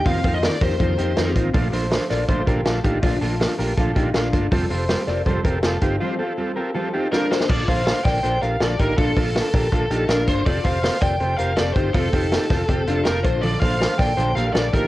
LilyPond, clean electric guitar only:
\new Staff \with { instrumentName = "Clean electric guitar" } { \time 4/4 \key bes \major \tempo 4 = 162 <c' f'>8 <f' a'>4 <g' bes'>8 <f' a'>8 <ees' g'>8 <c' f'>4 | <f' a'>8 <a' c''>4 <bes' d''>8 <a' c''>8 <g' bes'>8 <f' a'>8 <ees' g'>8 | <d' f'>8 <f' a'>4 <g' bes'>8 <f' a'>8 <ees' g'>8 <d' f'>4 | <f' a'>8 <a' c''>4 <bes' d''>8 <a' c''>8 <g' bes'>8 <f' a'>8 <ees' g'>8 |
<c' f'>8 <f' a'>4 <g' bes'>8 <f' a'>8 <ees' g'>8 <d' f'>4 | <f' a'>8 <a' c''>4 <bes' d''>8 <a' c''>8 <g' bes'>8 <f' a'>8 <ees' g'>8 | <d' f'>8 <f' a'>4 <g' bes'>8 <f' a'>8 <ees' g'>8 <d' f'>4 | <f' a'>8 <a' c''>4 <bes' d''>8 <a' c''>8 <g' bes'>8 <f' a'>8 <ees' g'>8 |
<c' f'>8 <ees' g'>4 <f' a'>8 <c' g'>8 <d' f'>8 <f' a'>4 | <f' a'>8 <a' c''>4 <bes' d''>8 <a' c''>8 <g' bes'>8 <f' a'>8 <ees' g'>8 | }